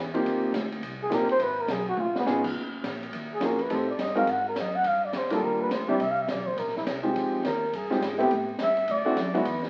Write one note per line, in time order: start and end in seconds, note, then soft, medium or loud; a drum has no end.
0.00 0.22 E2 medium
0.14 0.52 A#3 medium
0.14 0.51 C4 medium
0.14 0.51 D#4 medium
0.14 0.51 F4 medium
0.14 0.52 G4 medium
0.14 ride medium
0.23 0.51 D#2 medium
0.23 ride medium
0.52 0.80 D2 loud
0.52 snare medium
0.52 hi-hat pedal medium
0.52 ride medium
0.72 ride medium
0.81 1.09 C2 medium
0.81 ride medium
1.03 1.16 G#4 loud
1.10 1.27 A#1 medium
1.10 1.26 A#3 medium
1.10 1.27 C4 medium
1.10 1.26 D#4 medium
1.10 1.26 F4 medium
1.10 1.27 G4 medium
1.10 snare medium
1.10 hi-hat pedal medium
1.10 ride medium
1.14 1.30 A#4 medium
1.27 1.45 C5 loud
1.27 muted upright bass stroke soft
1.27 ride soft
1.38 1.67 G#1 medium
1.38 ride medium
1.43 1.62 B4 loud
1.60 1.73 A#4 medium
1.67 1.96 B1 loud
1.67 snare medium
1.67 hi-hat pedal medium
1.67 ride medium
1.71 1.88 G#4 medium
1.88 2.01 F#4 loud
1.97 2.25 C#2 loud
1.97 2.16 F4 medium
1.97 high tom medium
2.15 2.24 B3 loud
2.15 snare medium
2.25 2.54 G#1 loud
2.25 2.42 B3 medium
2.25 2.42 C#4 medium
2.25 2.42 D#4 medium
2.25 2.42 F4 medium
2.25 2.42 G#4 medium
2.25 snare medium
2.25 hi-hat pedal medium
2.44 kick medium
2.44 crash medium
2.54 2.82 F#1 medium
2.82 3.11 A#1 medium
2.82 snare medium
2.82 hi-hat pedal medium
2.82 ride medium
3.03 ride soft
3.12 3.40 D#2 medium
3.12 ride medium
3.34 3.47 G#4 medium
3.40 3.68 F2 loud
3.40 3.57 A#3 medium
3.40 3.57 C#4 medium
3.40 3.57 F4 medium
3.40 3.58 F#4 medium
3.40 3.58 G#4 medium
3.40 snare medium
3.40 hi-hat pedal medium
3.40 ride medium
3.46 3.63 A#4 medium
3.59 3.75 B4 medium
3.59 ride medium
3.69 3.97 A2 medium
3.69 3.86 A3 medium
3.69 3.86 C4 medium
3.69 3.86 D#4 medium
3.69 3.86 G4 medium
3.69 3.86 A4 medium
3.69 ride medium
3.74 3.89 C5 medium
3.90 4.03 D5 medium
3.97 4.26 G2 medium
3.97 4.17 D#5 medium
3.97 snare medium
3.97 hi-hat pedal medium
3.97 ride medium
4.15 4.26 G#3 medium
4.15 4.26 C4 medium
4.15 4.26 D#4 medium
4.15 4.26 F#4 medium
4.15 4.26 A#4 medium
4.15 4.32 F5 medium
4.15 ride soft
4.27 4.55 G#2 loud
4.27 4.47 F#5 loud
4.27 ride medium
4.48 4.61 A#4 medium
4.56 4.83 F#2 medium
4.56 4.77 D#5 medium
4.56 snare medium
4.56 hi-hat pedal medium
4.56 ride medium
4.76 4.89 F#5 loud
4.83 5.12 G2 medium
4.83 5.06 F5 medium
4.83 ride medium
5.05 5.19 D5 medium
5.12 5.40 F2 medium
5.12 snare medium
5.12 hi-hat pedal medium
5.12 ride medium
5.17 5.33 C5 medium
5.23 snare soft
5.30 5.68 G3 medium
5.30 5.69 A#3 medium
5.30 5.68 D4 medium
5.30 5.69 F4 medium
5.30 5.46 A4 medium
5.30 5.69 A#4 medium
5.30 snare soft
5.30 ride medium
5.40 5.69 D#2 loud
5.45 5.61 A#4 medium
5.61 5.74 B4 loud
5.69 5.97 D2 medium
5.69 5.89 C5 medium
5.69 snare medium
5.69 hi-hat pedal medium
5.69 ride medium
5.88 5.99 G3 medium
5.88 5.98 C4 medium
5.88 5.98 D4 medium
5.88 5.98 E4 medium
5.88 5.98 G4 medium
5.88 6.03 D5 medium
5.98 6.27 C2 medium
5.98 6.13 E5 loud
5.98 ride medium
6.11 6.23 F5 loud
6.22 6.32 E5 medium
6.28 6.56 B1 medium
6.28 6.48 D5 medium
6.28 snare medium
6.28 hi-hat pedal medium
6.28 ride medium
6.46 6.60 C5 medium
6.46 kick medium
6.56 6.84 A#1 medium
6.56 6.76 A#4 medium
6.56 ride medium
6.68 snare soft
6.77 6.83 E4 medium
6.77 snare soft
6.85 7.13 C2 medium
6.85 snare medium
6.85 hi-hat pedal medium
6.85 ride medium
7.03 7.41 G#3 medium
7.03 7.41 C4 medium
7.03 7.41 D#4 medium
7.03 7.41 F4 medium
7.03 7.41 G4 medium
7.14 7.42 F2 medium
7.14 ride medium
7.43 7.71 D#2 loud
7.43 7.77 A#4 medium
7.43 snare medium
7.43 hi-hat pedal medium
7.43 ride medium
7.72 8.00 G2 medium
7.72 8.20 G#4 medium
7.72 ride medium
7.90 8.00 G#3 medium
7.90 8.00 C4 medium
7.90 8.00 D#4 medium
7.90 8.00 F4 medium
7.90 8.00 G4 medium
7.90 snare medium
8.01 8.29 G#2 loud
8.01 snare medium
8.01 hi-hat pedal medium
8.01 ride medium
8.18 8.28 A3 medium
8.18 8.29 B3 medium
8.18 8.28 C4 medium
8.18 8.28 E4 medium
8.18 8.29 G4 loud
8.18 8.47 G4 medium
8.18 ride medium
8.30 8.58 A2 medium
8.30 ride medium
8.58 8.86 G2 loud
8.58 snare medium
8.58 hi-hat pedal medium
8.58 ride medium
8.63 8.93 E5 loud
8.77 ride medium
8.87 9.15 D2 medium
8.87 9.39 D5 loud
8.87 ride medium
9.05 9.15 A3 medium
9.05 9.15 C4 medium
9.05 9.15 D4 medium
9.05 9.15 E4 medium
9.05 9.15 F#4 loud
9.16 9.44 F#2 loud
9.16 snare medium
9.16 hi-hat pedal medium
9.16 ride medium
9.34 9.44 G#3 medium
9.34 9.44 B3 medium
9.34 9.44 D#4 medium
9.34 9.44 E4 medium
9.34 9.44 F#4 medium
9.34 9.65 B4 medium
9.34 ride medium
9.45 9.70 E2 loud
9.45 ride medium
9.63 snare medium